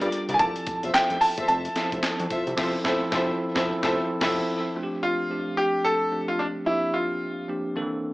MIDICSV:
0, 0, Header, 1, 6, 480
1, 0, Start_track
1, 0, Tempo, 545455
1, 348, Time_signature, 4, 2, 24, 8
1, 7160, End_track
2, 0, Start_track
2, 0, Title_t, "String section"
2, 0, Program_c, 0, 48
2, 8, Note_on_c, 0, 65, 79
2, 9, Note_on_c, 0, 67, 69
2, 11, Note_on_c, 0, 70, 69
2, 14, Note_on_c, 0, 74, 82
2, 138, Note_off_c, 0, 65, 0
2, 139, Note_off_c, 0, 67, 0
2, 140, Note_off_c, 0, 70, 0
2, 141, Note_off_c, 0, 74, 0
2, 248, Note_on_c, 0, 65, 75
2, 250, Note_on_c, 0, 67, 72
2, 252, Note_on_c, 0, 70, 74
2, 254, Note_on_c, 0, 74, 88
2, 378, Note_off_c, 0, 65, 0
2, 379, Note_off_c, 0, 67, 0
2, 380, Note_off_c, 0, 70, 0
2, 381, Note_off_c, 0, 74, 0
2, 729, Note_on_c, 0, 65, 81
2, 732, Note_on_c, 0, 69, 69
2, 733, Note_on_c, 0, 72, 71
2, 735, Note_on_c, 0, 76, 94
2, 816, Note_off_c, 0, 65, 0
2, 818, Note_off_c, 0, 69, 0
2, 819, Note_off_c, 0, 72, 0
2, 821, Note_off_c, 0, 76, 0
2, 826, Note_on_c, 0, 65, 78
2, 828, Note_on_c, 0, 69, 77
2, 830, Note_on_c, 0, 72, 75
2, 832, Note_on_c, 0, 76, 95
2, 993, Note_off_c, 0, 65, 0
2, 994, Note_off_c, 0, 69, 0
2, 994, Note_off_c, 0, 72, 0
2, 995, Note_off_c, 0, 76, 0
2, 1211, Note_on_c, 0, 65, 73
2, 1213, Note_on_c, 0, 69, 67
2, 1214, Note_on_c, 0, 72, 76
2, 1216, Note_on_c, 0, 76, 92
2, 1339, Note_off_c, 0, 65, 0
2, 1340, Note_off_c, 0, 69, 0
2, 1341, Note_off_c, 0, 72, 0
2, 1342, Note_off_c, 0, 76, 0
2, 1547, Note_on_c, 0, 65, 82
2, 1548, Note_on_c, 0, 69, 72
2, 1551, Note_on_c, 0, 72, 70
2, 1552, Note_on_c, 0, 76, 84
2, 1713, Note_off_c, 0, 65, 0
2, 1714, Note_off_c, 0, 69, 0
2, 1715, Note_off_c, 0, 72, 0
2, 1715, Note_off_c, 0, 76, 0
2, 2025, Note_on_c, 0, 65, 77
2, 2027, Note_on_c, 0, 69, 75
2, 2029, Note_on_c, 0, 72, 73
2, 2030, Note_on_c, 0, 76, 91
2, 2192, Note_off_c, 0, 65, 0
2, 2193, Note_off_c, 0, 69, 0
2, 2194, Note_off_c, 0, 72, 0
2, 2195, Note_off_c, 0, 76, 0
2, 2266, Note_on_c, 0, 65, 98
2, 2268, Note_on_c, 0, 69, 106
2, 2270, Note_on_c, 0, 72, 102
2, 2270, Note_on_c, 0, 76, 96
2, 2438, Note_off_c, 0, 65, 0
2, 2439, Note_off_c, 0, 69, 0
2, 2440, Note_off_c, 0, 72, 0
2, 2441, Note_off_c, 0, 76, 0
2, 2506, Note_on_c, 0, 65, 102
2, 2508, Note_on_c, 0, 69, 104
2, 2509, Note_on_c, 0, 72, 97
2, 2511, Note_on_c, 0, 76, 104
2, 2679, Note_off_c, 0, 65, 0
2, 2679, Note_off_c, 0, 69, 0
2, 2680, Note_off_c, 0, 72, 0
2, 2681, Note_off_c, 0, 76, 0
2, 2745, Note_on_c, 0, 65, 105
2, 2747, Note_on_c, 0, 69, 99
2, 2749, Note_on_c, 0, 72, 113
2, 2750, Note_on_c, 0, 76, 108
2, 2918, Note_off_c, 0, 65, 0
2, 2919, Note_off_c, 0, 69, 0
2, 2920, Note_off_c, 0, 72, 0
2, 2921, Note_off_c, 0, 76, 0
2, 3128, Note_on_c, 0, 65, 104
2, 3130, Note_on_c, 0, 69, 99
2, 3132, Note_on_c, 0, 72, 105
2, 3133, Note_on_c, 0, 76, 106
2, 3285, Note_off_c, 0, 65, 0
2, 3286, Note_off_c, 0, 69, 0
2, 3287, Note_off_c, 0, 72, 0
2, 3288, Note_off_c, 0, 76, 0
2, 3369, Note_on_c, 0, 65, 105
2, 3370, Note_on_c, 0, 69, 115
2, 3373, Note_on_c, 0, 72, 115
2, 3374, Note_on_c, 0, 76, 103
2, 3525, Note_off_c, 0, 65, 0
2, 3526, Note_off_c, 0, 69, 0
2, 3527, Note_off_c, 0, 72, 0
2, 3528, Note_off_c, 0, 76, 0
2, 3705, Note_on_c, 0, 65, 94
2, 3708, Note_on_c, 0, 69, 105
2, 3709, Note_on_c, 0, 72, 98
2, 3711, Note_on_c, 0, 76, 104
2, 3878, Note_off_c, 0, 65, 0
2, 3879, Note_off_c, 0, 69, 0
2, 3880, Note_off_c, 0, 72, 0
2, 3881, Note_off_c, 0, 76, 0
2, 7160, End_track
3, 0, Start_track
3, 0, Title_t, "Grand piano"
3, 0, Program_c, 1, 0
3, 299, Note_on_c, 1, 80, 79
3, 347, Note_on_c, 1, 81, 102
3, 348, Note_off_c, 1, 80, 0
3, 824, Note_on_c, 1, 79, 104
3, 842, Note_off_c, 1, 81, 0
3, 1063, Note_on_c, 1, 81, 102
3, 1074, Note_off_c, 1, 79, 0
3, 1289, Note_off_c, 1, 81, 0
3, 1302, Note_on_c, 1, 81, 97
3, 3670, Note_off_c, 1, 81, 0
3, 4425, Note_on_c, 1, 65, 104
3, 4904, Note_on_c, 1, 67, 102
3, 4921, Note_off_c, 1, 65, 0
3, 5144, Note_on_c, 1, 69, 120
3, 5153, Note_off_c, 1, 67, 0
3, 5503, Note_off_c, 1, 69, 0
3, 5528, Note_on_c, 1, 65, 97
3, 5625, Note_on_c, 1, 62, 90
3, 5629, Note_off_c, 1, 65, 0
3, 5679, Note_off_c, 1, 62, 0
3, 5863, Note_on_c, 1, 64, 100
3, 6104, Note_on_c, 1, 65, 89
3, 6113, Note_off_c, 1, 64, 0
3, 6552, Note_off_c, 1, 65, 0
3, 7160, End_track
4, 0, Start_track
4, 0, Title_t, "Tine electric piano"
4, 0, Program_c, 2, 4
4, 0, Control_c, 2, 64, 127
4, 0, Note_on_c, 2, 55, 91
4, 0, Note_on_c, 2, 62, 85
4, 0, Note_on_c, 2, 65, 78
4, 0, Note_on_c, 2, 69, 80
4, 0, Note_on_c, 2, 70, 99
4, 269, Note_off_c, 2, 55, 0
4, 270, Note_off_c, 2, 62, 0
4, 272, Note_off_c, 2, 65, 0
4, 303, Note_off_c, 2, 70, 0
4, 344, Note_on_c, 2, 53, 81
4, 348, Note_on_c, 2, 60, 68
4, 350, Note_on_c, 2, 64, 65
4, 354, Note_off_c, 2, 69, 0
4, 354, Note_on_c, 2, 69, 88
4, 360, Control_c, 2, 64, 0
4, 504, Control_c, 2, 64, 127
4, 1202, Note_off_c, 2, 53, 0
4, 1204, Note_off_c, 2, 60, 0
4, 1205, Note_off_c, 2, 64, 0
4, 1207, Note_off_c, 2, 69, 0
4, 1543, Note_on_c, 2, 53, 75
4, 1547, Note_on_c, 2, 60, 65
4, 1551, Note_on_c, 2, 64, 73
4, 1554, Note_on_c, 2, 69, 84
4, 2190, Note_off_c, 2, 53, 0
4, 2191, Note_off_c, 2, 60, 0
4, 2193, Note_off_c, 2, 64, 0
4, 2195, Note_off_c, 2, 69, 0
4, 2261, Note_on_c, 2, 53, 102
4, 2264, Note_on_c, 2, 60, 104
4, 2269, Note_on_c, 2, 64, 96
4, 2271, Note_on_c, 2, 69, 100
4, 2436, Note_off_c, 2, 53, 0
4, 2437, Note_off_c, 2, 60, 0
4, 2440, Note_off_c, 2, 64, 0
4, 2441, Note_off_c, 2, 69, 0
4, 2500, Note_on_c, 2, 53, 96
4, 2504, Note_on_c, 2, 60, 106
4, 2508, Note_on_c, 2, 64, 104
4, 2511, Note_on_c, 2, 69, 104
4, 2675, Note_off_c, 2, 53, 0
4, 2677, Note_off_c, 2, 60, 0
4, 2679, Note_off_c, 2, 64, 0
4, 2681, Note_off_c, 2, 69, 0
4, 2739, Note_on_c, 2, 53, 98
4, 2743, Note_on_c, 2, 60, 101
4, 2747, Note_on_c, 2, 64, 101
4, 2750, Note_on_c, 2, 69, 106
4, 2915, Note_off_c, 2, 53, 0
4, 2917, Note_off_c, 2, 60, 0
4, 2919, Note_off_c, 2, 64, 0
4, 2921, Note_off_c, 2, 69, 0
4, 3125, Note_on_c, 2, 53, 94
4, 3128, Note_on_c, 2, 60, 96
4, 3132, Note_on_c, 2, 64, 103
4, 3135, Note_on_c, 2, 69, 110
4, 3283, Note_off_c, 2, 53, 0
4, 3285, Note_off_c, 2, 60, 0
4, 3287, Note_off_c, 2, 64, 0
4, 3289, Note_off_c, 2, 69, 0
4, 3367, Note_on_c, 2, 53, 106
4, 3370, Note_on_c, 2, 60, 104
4, 3374, Note_on_c, 2, 64, 99
4, 3377, Note_on_c, 2, 69, 111
4, 3524, Note_off_c, 2, 53, 0
4, 3526, Note_off_c, 2, 60, 0
4, 3528, Note_off_c, 2, 64, 0
4, 3530, Note_off_c, 2, 69, 0
4, 3702, Note_on_c, 2, 53, 102
4, 3707, Note_on_c, 2, 60, 100
4, 3710, Note_on_c, 2, 64, 111
4, 3714, Note_on_c, 2, 69, 109
4, 3876, Note_off_c, 2, 53, 0
4, 3879, Note_off_c, 2, 60, 0
4, 3881, Note_off_c, 2, 64, 0
4, 3883, Note_off_c, 2, 69, 0
4, 4184, Note_on_c, 2, 53, 86
4, 4187, Note_on_c, 2, 57, 84
4, 4190, Note_on_c, 2, 60, 87
4, 4193, Note_on_c, 2, 62, 89
4, 4196, Note_on_c, 2, 65, 80
4, 4200, Control_c, 2, 64, 0
4, 4253, Note_on_c, 2, 67, 105
4, 4261, Note_off_c, 2, 65, 0
4, 4359, Control_c, 2, 64, 127
4, 4616, Note_off_c, 2, 53, 0
4, 4617, Note_off_c, 2, 57, 0
4, 4618, Note_off_c, 2, 60, 0
4, 4620, Note_off_c, 2, 62, 0
4, 4650, Note_off_c, 2, 67, 0
4, 4664, Note_on_c, 2, 53, 77
4, 4666, Note_on_c, 2, 57, 73
4, 4669, Note_on_c, 2, 60, 68
4, 4671, Note_on_c, 2, 62, 76
4, 4674, Note_on_c, 2, 67, 80
4, 5310, Note_off_c, 2, 53, 0
4, 5311, Note_off_c, 2, 57, 0
4, 5313, Note_off_c, 2, 60, 0
4, 5314, Note_off_c, 2, 62, 0
4, 5315, Note_off_c, 2, 67, 0
4, 5383, Note_on_c, 2, 53, 75
4, 5385, Note_on_c, 2, 57, 70
4, 5388, Note_on_c, 2, 60, 68
4, 5391, Note_on_c, 2, 62, 70
4, 5393, Note_on_c, 2, 67, 79
4, 5853, Note_off_c, 2, 53, 0
4, 5859, Note_off_c, 2, 60, 0
4, 5861, Note_off_c, 2, 62, 0
4, 5863, Note_off_c, 2, 67, 0
4, 5863, Note_on_c, 2, 53, 81
4, 5866, Note_on_c, 2, 58, 73
4, 5867, Note_off_c, 2, 57, 0
4, 5869, Note_on_c, 2, 60, 77
4, 5872, Note_on_c, 2, 62, 75
4, 5873, Note_on_c, 2, 67, 89
4, 5879, Control_c, 2, 64, 0
4, 6009, Control_c, 2, 64, 127
4, 6510, Note_off_c, 2, 53, 0
4, 6511, Note_off_c, 2, 58, 0
4, 6512, Note_off_c, 2, 60, 0
4, 6514, Note_off_c, 2, 62, 0
4, 6515, Note_off_c, 2, 67, 0
4, 6584, Note_on_c, 2, 53, 79
4, 6586, Note_on_c, 2, 58, 75
4, 6588, Note_on_c, 2, 60, 71
4, 6591, Note_on_c, 2, 62, 73
4, 6595, Note_on_c, 2, 67, 92
4, 6816, Note_off_c, 2, 58, 0
4, 6818, Note_off_c, 2, 60, 0
4, 6822, Note_off_c, 2, 62, 0
4, 6824, Note_on_c, 2, 51, 78
4, 6826, Note_off_c, 2, 53, 0
4, 6826, Note_on_c, 2, 58, 94
4, 6829, Note_on_c, 2, 60, 90
4, 6831, Note_off_c, 2, 67, 0
4, 6832, Note_on_c, 2, 62, 90
4, 6835, Note_on_c, 2, 69, 105
4, 6839, Control_c, 2, 64, 0
4, 6880, Note_on_c, 2, 52, 101
4, 6895, Note_off_c, 2, 51, 0
4, 6984, Control_c, 2, 64, 127
4, 7160, Note_off_c, 2, 52, 0
4, 7160, Note_off_c, 2, 58, 0
4, 7160, Note_off_c, 2, 60, 0
4, 7160, Note_off_c, 2, 62, 0
4, 7160, Note_off_c, 2, 69, 0
4, 7160, End_track
5, 0, Start_track
5, 0, Title_t, "Analog synth bass"
5, 0, Program_c, 3, 38
5, 14, Note_on_c, 3, 43, 105
5, 84, Note_off_c, 3, 43, 0
5, 254, Note_on_c, 3, 36, 94
5, 324, Note_off_c, 3, 36, 0
5, 348, Note_on_c, 3, 29, 100
5, 454, Note_off_c, 3, 29, 0
5, 735, Note_on_c, 3, 28, 88
5, 805, Note_off_c, 3, 28, 0
5, 831, Note_on_c, 3, 29, 51
5, 888, Note_off_c, 3, 29, 0
5, 975, Note_on_c, 3, 29, 97
5, 1044, Note_off_c, 3, 29, 0
5, 1213, Note_on_c, 3, 28, 89
5, 1283, Note_off_c, 3, 28, 0
5, 1311, Note_on_c, 3, 29, 93
5, 1487, Note_off_c, 3, 29, 0
5, 1693, Note_on_c, 3, 29, 98
5, 1764, Note_off_c, 3, 29, 0
5, 1935, Note_on_c, 3, 41, 94
5, 2005, Note_off_c, 3, 41, 0
5, 2174, Note_on_c, 3, 36, 91
5, 2244, Note_off_c, 3, 36, 0
5, 2268, Note_on_c, 3, 29, 99
5, 2440, Note_off_c, 3, 29, 0
5, 2509, Note_on_c, 3, 29, 99
5, 2680, Note_off_c, 3, 29, 0
5, 2748, Note_on_c, 3, 29, 107
5, 2919, Note_off_c, 3, 29, 0
5, 3132, Note_on_c, 3, 29, 111
5, 3287, Note_off_c, 3, 29, 0
5, 3372, Note_on_c, 3, 29, 114
5, 3527, Note_off_c, 3, 29, 0
5, 3709, Note_on_c, 3, 29, 110
5, 3880, Note_off_c, 3, 29, 0
5, 7160, End_track
6, 0, Start_track
6, 0, Title_t, "Drums"
6, 13, Note_on_c, 9, 42, 51
6, 101, Note_off_c, 9, 42, 0
6, 108, Note_on_c, 9, 42, 65
6, 196, Note_off_c, 9, 42, 0
6, 253, Note_on_c, 9, 42, 50
6, 341, Note_off_c, 9, 42, 0
6, 346, Note_on_c, 9, 42, 75
6, 347, Note_on_c, 9, 36, 118
6, 434, Note_off_c, 9, 42, 0
6, 435, Note_off_c, 9, 36, 0
6, 490, Note_on_c, 9, 42, 61
6, 578, Note_off_c, 9, 42, 0
6, 585, Note_on_c, 9, 42, 76
6, 589, Note_on_c, 9, 36, 106
6, 673, Note_off_c, 9, 42, 0
6, 677, Note_off_c, 9, 36, 0
6, 732, Note_on_c, 9, 42, 61
6, 820, Note_off_c, 9, 42, 0
6, 828, Note_on_c, 9, 42, 80
6, 830, Note_on_c, 9, 38, 127
6, 838, Note_on_c, 9, 39, 99
6, 916, Note_off_c, 9, 42, 0
6, 918, Note_off_c, 9, 38, 0
6, 926, Note_off_c, 9, 39, 0
6, 969, Note_on_c, 9, 42, 48
6, 1057, Note_off_c, 9, 42, 0
6, 1067, Note_on_c, 9, 46, 73
6, 1155, Note_off_c, 9, 46, 0
6, 1211, Note_on_c, 9, 42, 57
6, 1212, Note_on_c, 9, 36, 91
6, 1299, Note_off_c, 9, 42, 0
6, 1300, Note_off_c, 9, 36, 0
6, 1306, Note_on_c, 9, 42, 75
6, 1394, Note_off_c, 9, 42, 0
6, 1452, Note_on_c, 9, 42, 52
6, 1540, Note_off_c, 9, 42, 0
6, 1545, Note_on_c, 9, 42, 65
6, 1549, Note_on_c, 9, 38, 66
6, 1633, Note_off_c, 9, 42, 0
6, 1637, Note_off_c, 9, 38, 0
6, 1693, Note_on_c, 9, 36, 83
6, 1693, Note_on_c, 9, 42, 50
6, 1781, Note_off_c, 9, 36, 0
6, 1781, Note_off_c, 9, 42, 0
6, 1785, Note_on_c, 9, 38, 114
6, 1787, Note_on_c, 9, 42, 82
6, 1793, Note_on_c, 9, 39, 87
6, 1873, Note_off_c, 9, 38, 0
6, 1875, Note_off_c, 9, 42, 0
6, 1881, Note_off_c, 9, 39, 0
6, 1932, Note_on_c, 9, 42, 51
6, 2020, Note_off_c, 9, 42, 0
6, 2028, Note_on_c, 9, 42, 60
6, 2030, Note_on_c, 9, 36, 96
6, 2116, Note_off_c, 9, 42, 0
6, 2118, Note_off_c, 9, 36, 0
6, 2173, Note_on_c, 9, 42, 46
6, 2261, Note_off_c, 9, 42, 0
6, 2267, Note_on_c, 9, 36, 109
6, 2267, Note_on_c, 9, 38, 118
6, 2267, Note_on_c, 9, 49, 89
6, 2355, Note_off_c, 9, 36, 0
6, 2355, Note_off_c, 9, 38, 0
6, 2355, Note_off_c, 9, 49, 0
6, 2507, Note_on_c, 9, 36, 120
6, 2507, Note_on_c, 9, 38, 116
6, 2595, Note_off_c, 9, 36, 0
6, 2595, Note_off_c, 9, 38, 0
6, 2746, Note_on_c, 9, 38, 114
6, 2747, Note_on_c, 9, 36, 116
6, 2834, Note_off_c, 9, 38, 0
6, 2835, Note_off_c, 9, 36, 0
6, 3130, Note_on_c, 9, 38, 117
6, 3131, Note_on_c, 9, 36, 125
6, 3218, Note_off_c, 9, 38, 0
6, 3219, Note_off_c, 9, 36, 0
6, 3371, Note_on_c, 9, 36, 114
6, 3371, Note_on_c, 9, 38, 111
6, 3459, Note_off_c, 9, 36, 0
6, 3459, Note_off_c, 9, 38, 0
6, 3707, Note_on_c, 9, 38, 121
6, 3707, Note_on_c, 9, 49, 90
6, 3708, Note_on_c, 9, 36, 112
6, 3795, Note_off_c, 9, 38, 0
6, 3795, Note_off_c, 9, 49, 0
6, 3796, Note_off_c, 9, 36, 0
6, 7160, End_track
0, 0, End_of_file